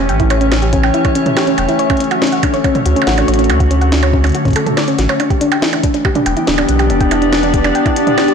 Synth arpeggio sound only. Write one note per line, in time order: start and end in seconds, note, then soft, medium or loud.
0.09 0.12 G5 medium
0.20 0.23 E4 medium
0.30 0.36 C#5 medium
0.41 0.44 C#4 loud
0.52 0.60 C#4 medium
0.62 0.66 G4 medium
0.73 0.78 C#4 loud
0.84 0.87 G5 medium
0.94 0.97 E4 medium
1.05 1.10 C#5 medium
1.16 1.19 C#4 medium
1.26 1.34 C#4 medium
1.37 1.40 G4 medium
1.47 1.53 C#4 loud
1.58 1.61 G5 medium
1.69 1.72 E4 medium
1.79 1.85 C#5 medium
1.90 1.93 C#4 loud
2.01 2.09 C#4 medium
2.11 2.14 F#4 medium
2.22 2.27 C#4 loud
2.32 2.36 F#5 medium
2.43 2.46 D4 medium
2.54 2.59 C#5 medium
2.64 2.68 C#4 loud
2.75 2.83 C#4 medium
2.86 2.89 F#4 medium
2.96 3.02 C#4 loud
3.07 3.10 F#5 medium
3.18 3.21 D4 medium
3.28 3.34 C#5 medium
3.39 3.42 C#4 loud
3.49 3.58 C#4 medium
3.60 3.63 F#4 medium
3.71 3.76 C#4 loud
3.81 3.85 F#5 medium
3.92 3.95 D4 medium
4.03 4.08 C#5 medium
4.13 4.17 C#4 loud
4.24 4.32 C#4 medium
4.35 4.38 F#4 medium
4.45 4.51 C#4 loud
4.56 4.61 A4 loud
4.66 4.70 A4 medium
4.77 4.83 D5 medium
4.88 4.96 C#4 medium
4.99 5.02 F#4 medium
5.09 5.17 C#5 medium
5.20 5.28 D4 medium
5.30 5.34 G4 medium
5.41 5.46 D4 loud
5.52 5.55 G5 medium
5.62 5.66 E4 medium
5.73 5.78 D4 medium
5.84 5.87 D4 loud
5.94 6.02 D4 medium
6.05 6.08 G4 medium
6.16 6.21 D4 loud
6.26 6.29 G5 medium
6.37 6.40 E4 medium
6.48 6.53 D4 medium
6.58 6.61 D4 loud
6.69 6.77 D4 medium
6.79 6.83 G4 medium
6.90 6.95 D4 loud
7.01 7.04 G5 medium
7.11 7.15 E4 medium
7.22 7.27 D4 medium
7.33 7.36 D4 loud
7.43 7.51 D4 medium
7.54 7.57 G4 medium
7.65 7.70 D4 loud
7.75 7.78 G5 medium
7.86 7.89 E4 medium
7.96 8.02 D4 medium
8.07 8.10 D4 medium
8.18 8.26 D4 medium
8.28 8.32 G4 medium